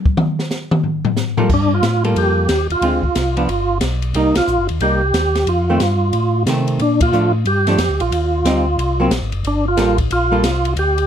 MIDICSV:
0, 0, Header, 1, 5, 480
1, 0, Start_track
1, 0, Key_signature, -2, "minor"
1, 0, Tempo, 330761
1, 260, Time_signature, 4, 2, 24, 8
1, 16060, End_track
2, 0, Start_track
2, 0, Title_t, "Tonewheel organ"
2, 0, Program_c, 0, 16
2, 2230, Note_on_c, 0, 62, 81
2, 2517, Note_off_c, 0, 62, 0
2, 2530, Note_on_c, 0, 65, 93
2, 2952, Note_off_c, 0, 65, 0
2, 3160, Note_on_c, 0, 67, 92
2, 3879, Note_off_c, 0, 67, 0
2, 3945, Note_on_c, 0, 65, 72
2, 5487, Note_off_c, 0, 65, 0
2, 6039, Note_on_c, 0, 63, 92
2, 6313, Note_off_c, 0, 63, 0
2, 6347, Note_on_c, 0, 65, 112
2, 6782, Note_off_c, 0, 65, 0
2, 6993, Note_on_c, 0, 67, 90
2, 7959, Note_on_c, 0, 65, 82
2, 7973, Note_off_c, 0, 67, 0
2, 9331, Note_off_c, 0, 65, 0
2, 9894, Note_on_c, 0, 62, 90
2, 10163, Note_off_c, 0, 62, 0
2, 10192, Note_on_c, 0, 65, 117
2, 10627, Note_off_c, 0, 65, 0
2, 10843, Note_on_c, 0, 67, 92
2, 11621, Note_on_c, 0, 65, 73
2, 11642, Note_off_c, 0, 67, 0
2, 13168, Note_off_c, 0, 65, 0
2, 13746, Note_on_c, 0, 62, 86
2, 14010, Note_off_c, 0, 62, 0
2, 14049, Note_on_c, 0, 65, 95
2, 14476, Note_off_c, 0, 65, 0
2, 14694, Note_on_c, 0, 65, 84
2, 15579, Note_off_c, 0, 65, 0
2, 15658, Note_on_c, 0, 67, 105
2, 16060, Note_off_c, 0, 67, 0
2, 16060, End_track
3, 0, Start_track
3, 0, Title_t, "Hollow-body jazz guitar"
3, 0, Program_c, 1, 26
3, 1993, Note_on_c, 1, 55, 78
3, 1997, Note_on_c, 1, 58, 75
3, 2007, Note_on_c, 1, 65, 71
3, 2010, Note_on_c, 1, 69, 82
3, 2169, Note_off_c, 1, 55, 0
3, 2171, Note_off_c, 1, 58, 0
3, 2176, Note_off_c, 1, 65, 0
3, 2177, Note_off_c, 1, 69, 0
3, 2967, Note_on_c, 1, 55, 64
3, 2970, Note_on_c, 1, 58, 63
3, 2974, Note_on_c, 1, 65, 64
3, 2976, Note_on_c, 1, 69, 78
3, 3581, Note_off_c, 1, 55, 0
3, 3582, Note_off_c, 1, 58, 0
3, 3584, Note_off_c, 1, 65, 0
3, 3585, Note_off_c, 1, 69, 0
3, 4101, Note_on_c, 1, 50, 53
3, 4105, Note_on_c, 1, 56, 54
3, 4107, Note_on_c, 1, 60, 55
3, 4114, Note_on_c, 1, 65, 60
3, 4373, Note_off_c, 1, 50, 0
3, 4375, Note_off_c, 1, 56, 0
3, 4376, Note_off_c, 1, 60, 0
3, 4379, Note_off_c, 1, 65, 0
3, 4887, Note_on_c, 1, 53, 60
3, 4897, Note_on_c, 1, 59, 59
3, 4904, Note_on_c, 1, 62, 60
3, 5038, Note_off_c, 1, 53, 0
3, 5043, Note_off_c, 1, 59, 0
3, 5047, Note_off_c, 1, 62, 0
3, 6025, Note_on_c, 1, 55, 53
3, 6037, Note_on_c, 1, 58, 57
3, 6046, Note_on_c, 1, 63, 62
3, 6296, Note_off_c, 1, 55, 0
3, 6302, Note_off_c, 1, 58, 0
3, 6306, Note_off_c, 1, 63, 0
3, 6987, Note_on_c, 1, 55, 51
3, 7002, Note_on_c, 1, 58, 53
3, 7005, Note_on_c, 1, 63, 53
3, 7258, Note_off_c, 1, 55, 0
3, 7265, Note_off_c, 1, 58, 0
3, 7267, Note_off_c, 1, 63, 0
3, 8264, Note_on_c, 1, 51, 61
3, 8270, Note_on_c, 1, 57, 69
3, 8280, Note_on_c, 1, 60, 71
3, 8409, Note_off_c, 1, 51, 0
3, 8412, Note_off_c, 1, 57, 0
3, 8417, Note_off_c, 1, 60, 0
3, 9401, Note_on_c, 1, 51, 59
3, 9412, Note_on_c, 1, 57, 57
3, 9421, Note_on_c, 1, 60, 65
3, 9869, Note_off_c, 1, 51, 0
3, 9875, Note_off_c, 1, 57, 0
3, 9880, Note_off_c, 1, 60, 0
3, 10342, Note_on_c, 1, 53, 55
3, 10355, Note_on_c, 1, 57, 60
3, 10367, Note_on_c, 1, 62, 64
3, 10617, Note_off_c, 1, 53, 0
3, 10623, Note_off_c, 1, 57, 0
3, 10630, Note_off_c, 1, 62, 0
3, 11138, Note_on_c, 1, 53, 70
3, 11145, Note_on_c, 1, 57, 67
3, 11153, Note_on_c, 1, 62, 79
3, 11287, Note_off_c, 1, 53, 0
3, 11291, Note_off_c, 1, 57, 0
3, 11295, Note_off_c, 1, 62, 0
3, 12264, Note_on_c, 1, 55, 62
3, 12278, Note_on_c, 1, 60, 72
3, 12280, Note_on_c, 1, 63, 61
3, 12538, Note_off_c, 1, 55, 0
3, 12545, Note_off_c, 1, 60, 0
3, 12546, Note_off_c, 1, 63, 0
3, 13057, Note_on_c, 1, 54, 74
3, 13066, Note_on_c, 1, 58, 75
3, 13075, Note_on_c, 1, 60, 77
3, 13207, Note_off_c, 1, 54, 0
3, 13211, Note_off_c, 1, 58, 0
3, 13216, Note_off_c, 1, 60, 0
3, 14179, Note_on_c, 1, 55, 61
3, 14183, Note_on_c, 1, 58, 62
3, 14192, Note_on_c, 1, 65, 62
3, 14193, Note_on_c, 1, 69, 60
3, 14456, Note_off_c, 1, 55, 0
3, 14457, Note_off_c, 1, 58, 0
3, 14462, Note_off_c, 1, 65, 0
3, 14463, Note_off_c, 1, 69, 0
3, 14968, Note_on_c, 1, 55, 68
3, 14976, Note_on_c, 1, 58, 80
3, 14984, Note_on_c, 1, 65, 82
3, 14986, Note_on_c, 1, 69, 79
3, 15123, Note_off_c, 1, 55, 0
3, 15127, Note_off_c, 1, 58, 0
3, 15130, Note_off_c, 1, 65, 0
3, 15131, Note_off_c, 1, 69, 0
3, 16060, End_track
4, 0, Start_track
4, 0, Title_t, "Tonewheel organ"
4, 0, Program_c, 2, 16
4, 2168, Note_on_c, 2, 43, 70
4, 2635, Note_off_c, 2, 43, 0
4, 2645, Note_on_c, 2, 45, 78
4, 3114, Note_off_c, 2, 45, 0
4, 3131, Note_on_c, 2, 41, 78
4, 3596, Note_off_c, 2, 41, 0
4, 3615, Note_on_c, 2, 39, 89
4, 3899, Note_off_c, 2, 39, 0
4, 3917, Note_on_c, 2, 39, 39
4, 4004, Note_off_c, 2, 39, 0
4, 4083, Note_on_c, 2, 38, 75
4, 4373, Note_off_c, 2, 38, 0
4, 4399, Note_on_c, 2, 38, 38
4, 4486, Note_off_c, 2, 38, 0
4, 4572, Note_on_c, 2, 36, 80
4, 5037, Note_off_c, 2, 36, 0
4, 5045, Note_on_c, 2, 31, 70
4, 5514, Note_off_c, 2, 31, 0
4, 5535, Note_on_c, 2, 35, 85
4, 6000, Note_off_c, 2, 35, 0
4, 6008, Note_on_c, 2, 36, 82
4, 6297, Note_off_c, 2, 36, 0
4, 6319, Note_on_c, 2, 36, 37
4, 6406, Note_off_c, 2, 36, 0
4, 6495, Note_on_c, 2, 34, 85
4, 6648, Note_on_c, 2, 31, 54
4, 6650, Note_off_c, 2, 34, 0
4, 6811, Note_off_c, 2, 31, 0
4, 6821, Note_on_c, 2, 39, 63
4, 6967, Note_off_c, 2, 39, 0
4, 6971, Note_on_c, 2, 36, 80
4, 7439, Note_off_c, 2, 36, 0
4, 7453, Note_on_c, 2, 39, 84
4, 7920, Note_off_c, 2, 39, 0
4, 7934, Note_on_c, 2, 41, 77
4, 8401, Note_off_c, 2, 41, 0
4, 8421, Note_on_c, 2, 43, 77
4, 8885, Note_off_c, 2, 43, 0
4, 8900, Note_on_c, 2, 45, 72
4, 9364, Note_off_c, 2, 45, 0
4, 9373, Note_on_c, 2, 48, 84
4, 9841, Note_off_c, 2, 48, 0
4, 9866, Note_on_c, 2, 46, 78
4, 10328, Note_off_c, 2, 46, 0
4, 10339, Note_on_c, 2, 45, 74
4, 10804, Note_off_c, 2, 45, 0
4, 10808, Note_on_c, 2, 43, 76
4, 11279, Note_off_c, 2, 43, 0
4, 11295, Note_on_c, 2, 41, 85
4, 11449, Note_on_c, 2, 38, 54
4, 11452, Note_off_c, 2, 41, 0
4, 11609, Note_on_c, 2, 34, 64
4, 11614, Note_off_c, 2, 38, 0
4, 11762, Note_off_c, 2, 34, 0
4, 11768, Note_on_c, 2, 39, 77
4, 12239, Note_off_c, 2, 39, 0
4, 12244, Note_on_c, 2, 38, 82
4, 12717, Note_off_c, 2, 38, 0
4, 12731, Note_on_c, 2, 36, 85
4, 13201, Note_off_c, 2, 36, 0
4, 13214, Note_on_c, 2, 34, 84
4, 13371, Note_off_c, 2, 34, 0
4, 13377, Note_on_c, 2, 32, 51
4, 13538, Note_off_c, 2, 32, 0
4, 13539, Note_on_c, 2, 30, 68
4, 13688, Note_off_c, 2, 30, 0
4, 13690, Note_on_c, 2, 31, 89
4, 14160, Note_off_c, 2, 31, 0
4, 14176, Note_on_c, 2, 33, 78
4, 14643, Note_off_c, 2, 33, 0
4, 14665, Note_on_c, 2, 34, 84
4, 15128, Note_off_c, 2, 34, 0
4, 15135, Note_on_c, 2, 36, 85
4, 15602, Note_off_c, 2, 36, 0
4, 15613, Note_on_c, 2, 38, 86
4, 16060, Note_off_c, 2, 38, 0
4, 16060, End_track
5, 0, Start_track
5, 0, Title_t, "Drums"
5, 79, Note_on_c, 9, 36, 82
5, 225, Note_off_c, 9, 36, 0
5, 251, Note_on_c, 9, 47, 109
5, 397, Note_off_c, 9, 47, 0
5, 568, Note_on_c, 9, 38, 48
5, 713, Note_off_c, 9, 38, 0
5, 734, Note_on_c, 9, 44, 58
5, 735, Note_on_c, 9, 38, 52
5, 879, Note_off_c, 9, 44, 0
5, 880, Note_off_c, 9, 38, 0
5, 1036, Note_on_c, 9, 47, 109
5, 1181, Note_off_c, 9, 47, 0
5, 1212, Note_on_c, 9, 43, 52
5, 1357, Note_off_c, 9, 43, 0
5, 1518, Note_on_c, 9, 43, 105
5, 1663, Note_off_c, 9, 43, 0
5, 1690, Note_on_c, 9, 44, 64
5, 1692, Note_on_c, 9, 38, 55
5, 1835, Note_off_c, 9, 44, 0
5, 1837, Note_off_c, 9, 38, 0
5, 1996, Note_on_c, 9, 43, 99
5, 2141, Note_off_c, 9, 43, 0
5, 2169, Note_on_c, 9, 49, 73
5, 2170, Note_on_c, 9, 36, 70
5, 2314, Note_off_c, 9, 49, 0
5, 2315, Note_off_c, 9, 36, 0
5, 2653, Note_on_c, 9, 44, 52
5, 2653, Note_on_c, 9, 51, 53
5, 2654, Note_on_c, 9, 38, 64
5, 2798, Note_off_c, 9, 44, 0
5, 2798, Note_off_c, 9, 51, 0
5, 2799, Note_off_c, 9, 38, 0
5, 2966, Note_on_c, 9, 51, 42
5, 3111, Note_off_c, 9, 51, 0
5, 3138, Note_on_c, 9, 51, 56
5, 3283, Note_off_c, 9, 51, 0
5, 3609, Note_on_c, 9, 44, 51
5, 3609, Note_on_c, 9, 51, 67
5, 3610, Note_on_c, 9, 38, 69
5, 3754, Note_off_c, 9, 44, 0
5, 3754, Note_off_c, 9, 51, 0
5, 3755, Note_off_c, 9, 38, 0
5, 3921, Note_on_c, 9, 51, 41
5, 4066, Note_off_c, 9, 51, 0
5, 4094, Note_on_c, 9, 51, 61
5, 4239, Note_off_c, 9, 51, 0
5, 4401, Note_on_c, 9, 36, 50
5, 4546, Note_off_c, 9, 36, 0
5, 4577, Note_on_c, 9, 44, 61
5, 4577, Note_on_c, 9, 51, 64
5, 4578, Note_on_c, 9, 38, 60
5, 4722, Note_off_c, 9, 44, 0
5, 4722, Note_off_c, 9, 51, 0
5, 4723, Note_off_c, 9, 38, 0
5, 4886, Note_on_c, 9, 51, 44
5, 5031, Note_off_c, 9, 51, 0
5, 5061, Note_on_c, 9, 51, 55
5, 5206, Note_off_c, 9, 51, 0
5, 5526, Note_on_c, 9, 44, 54
5, 5526, Note_on_c, 9, 51, 74
5, 5527, Note_on_c, 9, 38, 70
5, 5671, Note_off_c, 9, 44, 0
5, 5671, Note_off_c, 9, 51, 0
5, 5672, Note_off_c, 9, 38, 0
5, 5837, Note_on_c, 9, 51, 45
5, 5982, Note_off_c, 9, 51, 0
5, 6012, Note_on_c, 9, 51, 57
5, 6157, Note_off_c, 9, 51, 0
5, 6318, Note_on_c, 9, 51, 66
5, 6319, Note_on_c, 9, 38, 74
5, 6463, Note_off_c, 9, 51, 0
5, 6465, Note_off_c, 9, 38, 0
5, 6494, Note_on_c, 9, 44, 54
5, 6639, Note_off_c, 9, 44, 0
5, 6801, Note_on_c, 9, 51, 42
5, 6946, Note_off_c, 9, 51, 0
5, 6972, Note_on_c, 9, 51, 55
5, 7117, Note_off_c, 9, 51, 0
5, 7458, Note_on_c, 9, 44, 54
5, 7458, Note_on_c, 9, 51, 68
5, 7459, Note_on_c, 9, 38, 69
5, 7603, Note_off_c, 9, 44, 0
5, 7603, Note_off_c, 9, 51, 0
5, 7605, Note_off_c, 9, 38, 0
5, 7769, Note_on_c, 9, 51, 45
5, 7771, Note_on_c, 9, 38, 45
5, 7914, Note_off_c, 9, 51, 0
5, 7916, Note_off_c, 9, 38, 0
5, 7937, Note_on_c, 9, 51, 54
5, 8082, Note_off_c, 9, 51, 0
5, 8416, Note_on_c, 9, 44, 52
5, 8416, Note_on_c, 9, 51, 59
5, 8418, Note_on_c, 9, 38, 63
5, 8561, Note_off_c, 9, 44, 0
5, 8561, Note_off_c, 9, 51, 0
5, 8563, Note_off_c, 9, 38, 0
5, 8893, Note_on_c, 9, 51, 49
5, 9039, Note_off_c, 9, 51, 0
5, 9383, Note_on_c, 9, 44, 59
5, 9383, Note_on_c, 9, 51, 66
5, 9385, Note_on_c, 9, 38, 64
5, 9529, Note_off_c, 9, 44, 0
5, 9529, Note_off_c, 9, 51, 0
5, 9530, Note_off_c, 9, 38, 0
5, 9687, Note_on_c, 9, 51, 46
5, 9832, Note_off_c, 9, 51, 0
5, 9860, Note_on_c, 9, 51, 54
5, 10005, Note_off_c, 9, 51, 0
5, 10167, Note_on_c, 9, 51, 73
5, 10170, Note_on_c, 9, 36, 70
5, 10312, Note_off_c, 9, 51, 0
5, 10315, Note_off_c, 9, 36, 0
5, 10341, Note_on_c, 9, 44, 48
5, 10486, Note_off_c, 9, 44, 0
5, 10818, Note_on_c, 9, 51, 51
5, 10963, Note_off_c, 9, 51, 0
5, 11127, Note_on_c, 9, 51, 47
5, 11128, Note_on_c, 9, 38, 42
5, 11272, Note_off_c, 9, 51, 0
5, 11273, Note_off_c, 9, 38, 0
5, 11295, Note_on_c, 9, 44, 60
5, 11295, Note_on_c, 9, 51, 73
5, 11297, Note_on_c, 9, 38, 73
5, 11440, Note_off_c, 9, 44, 0
5, 11440, Note_off_c, 9, 51, 0
5, 11442, Note_off_c, 9, 38, 0
5, 11610, Note_on_c, 9, 51, 48
5, 11756, Note_off_c, 9, 51, 0
5, 11787, Note_on_c, 9, 51, 64
5, 11932, Note_off_c, 9, 51, 0
5, 12269, Note_on_c, 9, 44, 58
5, 12269, Note_on_c, 9, 51, 65
5, 12270, Note_on_c, 9, 38, 58
5, 12414, Note_off_c, 9, 44, 0
5, 12414, Note_off_c, 9, 51, 0
5, 12415, Note_off_c, 9, 38, 0
5, 12755, Note_on_c, 9, 51, 57
5, 12901, Note_off_c, 9, 51, 0
5, 13221, Note_on_c, 9, 44, 54
5, 13221, Note_on_c, 9, 51, 66
5, 13223, Note_on_c, 9, 38, 73
5, 13366, Note_off_c, 9, 44, 0
5, 13366, Note_off_c, 9, 51, 0
5, 13368, Note_off_c, 9, 38, 0
5, 13527, Note_on_c, 9, 51, 43
5, 13672, Note_off_c, 9, 51, 0
5, 13706, Note_on_c, 9, 51, 59
5, 13851, Note_off_c, 9, 51, 0
5, 14183, Note_on_c, 9, 44, 58
5, 14183, Note_on_c, 9, 51, 63
5, 14185, Note_on_c, 9, 38, 58
5, 14328, Note_off_c, 9, 44, 0
5, 14328, Note_off_c, 9, 51, 0
5, 14330, Note_off_c, 9, 38, 0
5, 14485, Note_on_c, 9, 51, 49
5, 14488, Note_on_c, 9, 36, 53
5, 14630, Note_off_c, 9, 51, 0
5, 14634, Note_off_c, 9, 36, 0
5, 14666, Note_on_c, 9, 51, 60
5, 14812, Note_off_c, 9, 51, 0
5, 15145, Note_on_c, 9, 44, 60
5, 15145, Note_on_c, 9, 51, 76
5, 15147, Note_on_c, 9, 38, 75
5, 15290, Note_off_c, 9, 44, 0
5, 15290, Note_off_c, 9, 51, 0
5, 15292, Note_off_c, 9, 38, 0
5, 15456, Note_on_c, 9, 51, 47
5, 15601, Note_off_c, 9, 51, 0
5, 15623, Note_on_c, 9, 51, 58
5, 15768, Note_off_c, 9, 51, 0
5, 15931, Note_on_c, 9, 51, 46
5, 16060, Note_off_c, 9, 51, 0
5, 16060, End_track
0, 0, End_of_file